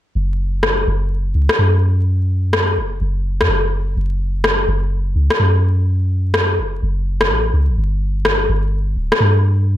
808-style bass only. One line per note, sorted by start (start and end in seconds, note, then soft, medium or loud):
0.15 0.86 F#1 medium
0.87 1.34 F#1 loud
1.35 1.49 C#2 medium
1.59 2.79 F#2 medium
2.78 3.00 F#1 loud
3.01 3.42 F#1 medium
3.41 3.48 F#2 medium
3.49 3.95 F#1 medium
3.97 4.67 F#1 medium
4.68 5.14 F#1 loud
5.15 5.30 C#2 medium
5.40 6.60 F#2 medium
6.59 6.81 F#1 loud
6.83 7.31 F#1 medium
7.30 7.52 A1 medium
7.53 7.70 C#2 medium
7.69 7.77 A1 medium
7.78 8.48 G1 medium
8.49 8.96 G1 loud
8.96 9.11 D1 medium
9.20 9.77 G2 medium